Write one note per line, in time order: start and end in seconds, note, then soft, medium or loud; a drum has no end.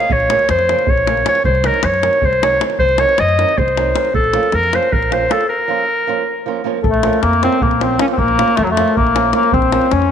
0.00 0.14 F5 medium
0.00 davul high soft
0.10 0.34 A#1 medium
0.10 0.50 C#5 medium
0.10 davul low medium
0.20 davul high soft
0.29 0.43 C#3 medium
0.29 0.44 F3 medium
0.29 0.44 A#3 medium
0.29 0.44 C#4 medium
0.29 davul high medium
0.39 davul high soft
0.49 0.73 F2 medium
0.49 0.91 C5 medium
0.49 davul high medium
0.59 davul high soft
0.69 0.83 C#3 medium
0.69 0.83 F3 medium
0.69 0.84 A#3 soft
0.69 0.84 C#4 medium
0.69 davul high medium
0.79 davul high soft
0.87 1.22 A#1 medium
0.87 1.27 C#5 medium
0.87 davul low medium
0.97 davul high soft
1.07 1.21 C#3 medium
1.07 1.21 F3 soft
1.07 1.22 A#3 soft
1.07 1.22 C#4 medium
1.07 davul high medium
1.17 davul high soft
1.25 1.39 C#3 medium
1.25 1.39 F3 medium
1.25 1.39 A#3 medium
1.25 1.39 C#4 medium
1.25 davul high medium
1.29 1.44 C#5 medium
1.35 davul high soft
1.44 1.68 C2 medium
1.44 1.68 C5 medium
1.44 davul low medium
1.55 davul high soft
1.64 1.78 D#3 medium
1.64 1.78 F#3 medium
1.64 1.79 C4 medium
1.64 1.79 D#4 medium
1.64 1.86 A#4 medium
1.64 davul high medium
1.74 davul high soft
1.83 2.07 F#2 medium
1.83 2.27 C#5 medium
1.83 davul high medium
1.94 davul high soft
2.02 2.17 D#3 medium
2.02 2.17 F#3 soft
2.02 2.17 C4 medium
2.02 2.18 D#4 medium
2.02 davul high medium
2.13 davul high soft
2.22 2.57 C2 medium
2.22 2.45 C5 medium
2.22 davul low medium
2.33 davul high soft
2.42 2.56 D#3 medium
2.42 2.56 F#3 medium
2.42 2.56 C4 medium
2.42 2.57 D#4 medium
2.42 2.61 C#5 medium
2.42 davul high medium
2.59 2.73 D#3 medium
2.59 2.74 F#3 medium
2.59 2.74 C4 medium
2.59 2.74 D#4 medium
2.59 davul high medium
2.70 davul high soft
2.78 3.03 C2 medium
2.78 3.02 C5 loud
2.78 davul low medium
2.89 davul high soft
2.98 3.13 D#3 medium
2.98 3.13 F#3 medium
2.98 3.14 C4 medium
2.98 3.14 D#4 medium
2.98 3.22 C#5 medium
2.98 davul high medium
3.09 davul high soft
3.18 3.42 F#2 medium
3.18 3.60 D#5 medium
3.18 davul high medium
3.29 davul high soft
3.38 3.52 D#3 medium
3.38 3.52 F#3 medium
3.38 3.53 C4 medium
3.38 3.53 D#4 medium
3.38 davul high medium
3.49 davul high soft
3.58 3.91 C2 medium
3.58 4.14 C5 medium
3.58 davul low medium
3.68 davul high soft
3.77 3.90 D#3 medium
3.77 3.91 F#3 soft
3.77 3.91 C4 medium
3.77 3.91 D#4 medium
3.77 davul high medium
3.94 4.08 D#3 medium
3.94 4.08 F#3 soft
3.94 4.09 C4 medium
3.94 4.09 D#4 medium
3.94 davul high medium
4.05 davul high soft
4.14 4.38 A#1 medium
4.14 4.57 A4 medium
4.14 davul low medium
4.24 davul high soft
4.33 4.48 F3 medium
4.33 4.48 A#3 medium
4.33 4.48 C#4 medium
4.33 4.48 F4 medium
4.33 davul high medium
4.43 davul high soft
4.52 4.77 F2 medium
4.52 4.76 A#4 medium
4.52 davul high medium
4.63 davul high soft
4.73 4.87 F3 medium
4.73 4.87 A#3 medium
4.73 4.88 C#4 medium
4.73 4.88 F4 medium
4.73 4.94 C5 medium
4.73 davul high medium
4.83 davul high soft
4.92 5.26 A#1 medium
4.92 5.14 A#4 medium
4.92 davul low medium
5.02 davul high soft
5.10 5.24 F3 medium
5.10 5.25 A#3 soft
5.10 5.25 C#4 medium
5.10 5.25 F4 medium
5.10 5.33 C5 medium
5.10 davul high medium
5.29 5.43 F3 medium
5.29 5.43 A#3 medium
5.29 5.43 C#4 medium
5.29 5.44 F4 medium
5.29 5.49 A4 medium
5.29 davul high medium
5.41 davul high soft
5.49 6.62 A#4 medium
5.68 5.82 F3 medium
5.68 5.82 A#3 medium
5.68 5.83 C#4 medium
5.68 5.83 F4 medium
6.07 6.22 F3 medium
6.07 6.22 A#3 medium
6.07 6.22 C#4 medium
6.07 6.22 F4 medium
6.46 6.60 F3 medium
6.46 6.60 A#3 medium
6.46 6.61 C#4 medium
6.46 6.61 F4 medium
6.64 6.78 F3 medium
6.64 6.79 A#3 medium
6.64 6.79 C#4 medium
6.64 6.79 F4 medium
6.83 7.07 A#1 medium
6.83 7.25 A3 medium
6.83 7.20 A4 medium
6.83 davul low medium
6.94 davul high soft
7.03 7.17 F3 medium
7.03 7.18 A#3 medium
7.03 7.18 C#4 medium
7.03 7.19 F4 medium
7.03 davul high medium
7.13 davul high soft
7.21 7.46 F2 medium
7.21 7.43 A#3 medium
7.21 7.42 A#4 medium
7.21 davul high medium
7.33 davul high soft
7.42 7.57 F3 medium
7.42 7.57 A#3 medium
7.42 7.64 C4 medium
7.42 7.57 C#4 medium
7.42 7.57 F4 medium
7.42 7.60 C5 medium
7.42 davul high medium
7.53 davul high soft
7.61 7.96 A#1 medium
7.61 7.85 A#3 medium
7.61 7.81 A#4 medium
7.61 davul low medium
7.71 davul high soft
7.80 7.94 F3 medium
7.80 7.95 A#3 soft
7.80 8.01 C4 medium
7.80 7.95 C#4 soft
7.80 7.95 F4 medium
7.80 8.00 C5 medium
7.80 davul high medium
7.99 8.13 F3 medium
7.99 8.13 A#3 medium
7.99 8.13 C#4 medium
7.99 8.06 C#4 medium
7.99 8.14 F4 medium
7.99 8.05 C#5 medium
7.99 davul high medium
8.08 davul high soft
8.13 8.19 C4 medium
8.13 8.18 C5 medium
8.17 8.42 A#1 medium
8.17 8.58 A#3 loud
8.17 8.57 A#4 medium
8.17 davul low medium
8.28 davul high soft
8.38 8.52 F3 medium
8.38 8.53 A#3 medium
8.38 8.53 C#4 medium
8.38 8.53 F4 medium
8.38 davul high medium
8.48 davul high soft
8.56 8.82 F2 medium
8.56 8.65 A3 medium
8.56 8.65 A4 medium
8.56 davul high medium
8.64 8.73 F#3 medium
8.64 8.72 F#4 medium
8.64 davul high soft
8.71 8.96 A3 medium
8.71 8.96 A4 medium
8.77 8.91 F3 medium
8.77 8.92 A#3 medium
8.77 8.92 C#4 medium
8.77 8.92 F4 medium
8.77 davul high medium
8.88 davul high soft
8.95 9.31 A#1 medium
8.95 9.32 A#3 medium
8.95 9.31 A#4 medium
8.95 davul low medium
9.07 davul high soft
9.15 9.29 F3 medium
9.15 9.29 A#3 medium
9.15 9.29 C#4 medium
9.15 9.30 F4 medium
9.15 davul high medium
9.33 9.48 F3 medium
9.33 9.48 A#3 medium
9.33 9.55 A#3 medium
9.33 9.48 C#4 medium
9.33 9.48 F4 medium
9.33 9.52 A#4 medium
9.33 davul high medium
9.43 davul high soft
9.52 9.77 A#1 loud
9.52 9.95 C4 medium
9.52 9.92 C5 loud
9.52 davul low medium
9.62 davul high soft
9.72 9.86 F3 medium
9.72 9.87 A#3 medium
9.72 9.87 C#4 medium
9.72 9.88 F4 medium
9.72 davul high medium
9.81 davul high soft
9.90 10.12 F2 medium
9.90 10.12 C#4 medium
9.90 10.12 C#5 medium
9.90 davul high medium
10.02 davul high soft